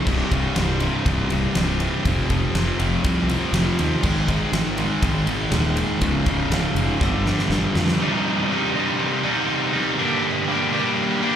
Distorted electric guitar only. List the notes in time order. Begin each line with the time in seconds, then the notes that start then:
0.06 C2 G2 C3
0.31 C2 G2 C3
0.56 C2 G2 C3
0.81 C2 G2 C3
1.05 C2 G2 C3
1.31 C2 G2 C3
1.56 C2 G2 C3
1.81 C2 G2 C3
2.06 F2 C3 F3
2.31 F2 C3 F3
2.55 F2 C3 F3
2.79 F2 C3 F3
3.03 F2 C3 F3
3.28 F2 C3 F3
3.52 F2 C3 F3
3.77 F2 C3 F3
4.03 G#2 D#3 G#3
4.28 G#2 D#3 G#3
4.53 G#2 D#3 G#3
4.78 G#2 D#3 G#3
5.03 G#2 D#3 G#3
5.27 G#2 D#3 G#3
5.52 G#2 D#3 G#3
5.77 G#2 D#3 G#3
6.02 C#2 G#2 C#3
6.26 C#2 G#2 C#3
6.52 C#2 G#2 C#3
6.78 C#2 G#2 C#3
7.01 G2 D3 G3
7.25 G2 D3 G3
7.51 G2 D3 G3
7.75 G2 D3 G3
8.00 C2 G2 C3 G3 D#4
8.49 G2 C3 G3 D#4
8.74 C3 G3 D#4
9.23 C3 G3 D#4
9.73 C3 G3 D#4
9.98 G2 D3 G3 A#3 D4 G4
10.47 G3 A#3 D4 G4
10.73 G3 A#3 D4 G4
11.22 G3 A#3 D4 G4